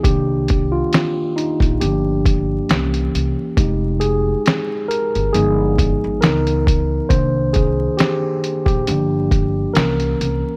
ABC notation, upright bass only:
X:1
M:4/4
L:1/16
Q:"Swing 16ths" 1/4=68
K:Cm
V:1 name="Upright bass" clef=bass
C,,4 z3 B,,, G,,,4 C,,2 C,, z | F,,,4 z3 G,,, G,,,3 A,,, _D,,4 | C,,4 z3 B,,, G,,,4 C,,2 C,, z |]